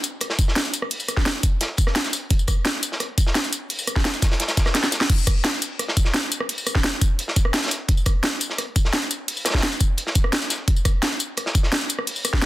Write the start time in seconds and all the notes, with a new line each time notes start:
0.03 closed hi-hat, tambourine
0.21 cross-stick, closed hi-hat
0.30 snare
0.39 kick, closed hi-hat, tambourine
0.48 snare
0.56 snare, closed hi-hat
0.65 tambourine
0.73 closed hi-hat, tambourine
0.82 cross-stick
0.91 closed hi-hat, open hi-hat
1.00 tambourine
1.08 cross-stick, closed hi-hat, tambourine
1.17 kick, snare
1.25 snare, closed hi-hat
1.43 kick, closed hi-hat, tambourine
1.61 snare, closed hi-hat
1.77 kick, closed hi-hat, tambourine
1.87 cross-stick, snare
1.96 snare, closed hi-hat
2.04 snare, tambourine
2.13 closed hi-hat, tambourine
2.30 kick, closed hi-hat
2.39 tambourine
2.47 kick, cross-stick, closed hi-hat, tambourine
2.65 snare, closed hi-hat
2.83 closed hi-hat, tambourine
2.92 snare
3.00 cross-stick, closed hi-hat
3.18 kick, closed hi-hat, tambourine
3.27 snare
3.35 snare, closed hi-hat
3.44 tambourine
3.53 closed hi-hat, tambourine
3.70 closed hi-hat, open hi-hat
3.79 tambourine
3.87 cross-stick, closed hi-hat, tambourine
3.96 kick, snare
4.05 snare, closed hi-hat
4.14 tambourine
4.22 kick, snare, closed hi-hat, tambourine
4.31 snare, closed hi-hat
4.40 snare, closed hi-hat
4.48 snare, closed hi-hat, tambourine
4.57 kick, snare, closed hi-hat, tambourine
4.65 cross-stick, snare, closed hi-hat
4.74 snare, closed hi-hat
4.83 snare, tambourine
4.92 snare, closed hi-hat, tambourine
5.01 snare
5.10 kick, closed hi-hat, crash
5.18 tambourine
5.27 kick, cross-stick, closed hi-hat, tambourine
5.44 snare, closed hi-hat
5.62 closed hi-hat, tambourine
5.79 cross-stick, closed hi-hat
5.88 snare
5.97 kick, closed hi-hat, tambourine
6.05 snare
6.14 snare, closed hi-hat
6.23 tambourine
6.32 closed hi-hat, tambourine
6.40 cross-stick
6.49 closed hi-hat, open hi-hat
6.58 tambourine
6.66 cross-stick, closed hi-hat, tambourine
6.75 kick, snare
6.84 snare, closed hi-hat
7.01 kick, closed hi-hat, tambourine
7.19 closed hi-hat
7.28 snare
7.36 kick, closed hi-hat, tambourine
7.45 cross-stick
7.54 snare, closed hi-hat
7.57 snare, closed hi-hat
7.62 snare, closed hi-hat, tambourine
7.66 snare, closed hi-hat
7.70 snare, closed hi-hat, tambourine
7.88 kick, closed hi-hat
7.97 tambourine
8.06 kick, cross-stick, closed hi-hat, tambourine
8.24 snare, closed hi-hat
8.40 closed hi-hat, tambourine
8.50 snare
8.58 cross-stick, closed hi-hat
8.76 kick, closed hi-hat, tambourine
8.85 snare
8.93 snare, closed hi-hat
9.02 tambourine
9.11 closed hi-hat, tambourine
9.28 closed hi-hat, open hi-hat
9.37 tambourine
9.45 cross-stick, snare, closed hi-hat, tambourine
9.50 snare, closed hi-hat
9.54 kick, snare, closed hi-hat
9.58 snare, closed hi-hat
9.63 snare, closed hi-hat
9.72 tambourine
9.80 kick, closed hi-hat, tambourine
9.98 closed hi-hat
10.07 snare
10.15 kick, closed hi-hat, tambourine
10.24 cross-stick
10.33 snare, closed hi-hat
10.41 snare, tambourine
10.50 snare, closed hi-hat, tambourine
10.68 kick, closed hi-hat
10.76 tambourine
10.85 kick, cross-stick, closed hi-hat, tambourine
11.02 snare, closed hi-hat
11.19 closed hi-hat, tambourine
11.37 cross-stick, closed hi-hat
11.46 snare
11.55 kick, closed hi-hat, tambourine
11.63 snare
11.72 snare, closed hi-hat
11.81 tambourine
11.89 closed hi-hat, tambourine
11.99 cross-stick
12.07 closed hi-hat, open hi-hat
12.16 tambourine
12.25 cross-stick, closed hi-hat, tambourine
12.33 kick, snare
12.42 snare, closed hi-hat